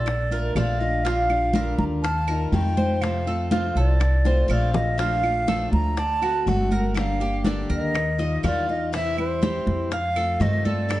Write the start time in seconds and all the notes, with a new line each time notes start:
Already playing: A#1 A4 D5
0.06 muted steel-string acoustic guitar stroke, high bongo, high conga, claves
0.31 A3 D4 F4 A#4, high bongo, high conga
0.55 A#1 F3 A3 D4 F4 D5 F5, high bongo, low bongo, high conga, claves
0.79 A3 D4 F4 D#5, high bongo, high conga
1.04 D3 G3 D4 F4 F5, high bongo, high conga
1.29 G3 D4 F4, high conga, claves
1.53 D3 G3 D4 F4 A#4, high bongo, high conga
1.78 D#2 A#5, high bongo, high conga
2.02 F5 A5, muted steel-string acoustic guitar stroke, high bongo, high conga
2.28 G3 D#4 F4 A#4, high bongo, high conga, claves
2.52 F2 D#3 G3 D#4 F4 G5, high bongo, low bongo, high conga
2.77 G3 D#4 F4 C5, high bongo, high conga
3.01 C3 F3 A3 C4 F4 F5, high bongo, high conga, claves
3.27 A3 C4 F4 A4, high conga
3.51 C3 F3 A3 C4 F4, high bongo, high conga
3.75 C2 A4 D5, high bongo
4.00 muted steel-string acoustic guitar stroke, high bongo, high conga, claves
4.25 A3 C4 F4 C5, high bongo, high conga
4.48 A#1 C3 F3 A3 C4 F4 D5 F5, high conga, claves
4.73 A3 C4 F4 D#5, low bongo, high conga
4.98 F3 A3 D4 F4 F5, high bongo, high conga
5.23 A3 D4 F4, high conga, claves
5.47 F3 A3 D4 F4 A4, high bongo, high conga
5.72 D2 A#5, high bongo, high conga
5.97 D5 A5, muted steel-string acoustic guitar stroke, high bongo, high conga
6.22 A3 C4 F#4, high bongo, high conga, claves
6.46 G1 D3 A3 C4 F#4 F#5, high bongo, low bongo, high conga
6.71 A3 C4 F#4 A#4, high bongo, high conga
6.94 D3 G3 A#3 D4 G4 F5, high bongo, high conga, claves
7.20 A#3 D4 G4, high conga
7.45 D3 G3 A#3 D4 G4, high bongo, high conga
7.69 D#2 A#4 D#5, high bongo
7.94 muted steel-string acoustic guitar stroke, high bongo, high conga, claves
8.18 G3 D#4 F4 D#5, high bongo, high conga
8.43 E2 D#3 G3 D#4 F4 D5 F5, high bongo, low bongo, high conga, claves
8.69 G3 D#4 F4 D#5, high bongo, high conga
8.92 C3 E3 G3 C4 E4 E5, high bongo, high conga
9.18 G3 C4 E4 C5, high conga, claves
9.42 C3 E3 G3 C4 E4 G4, high bongo, high conga
9.67 F2, high bongo, high conga
9.91 F5, muted steel-string acoustic guitar stroke, high bongo, high conga
10.16 A3 C4 F4 A4, high bongo, high conga, claves
10.40 G2 C3 D#3 A3 C4 F4 D#5, high bongo, low bongo, high conga
10.65 A3 C4 F4 A4 D5, high bongo, high conga
10.89 D3 G3 A#3 D4 A4, high bongo, high conga, claves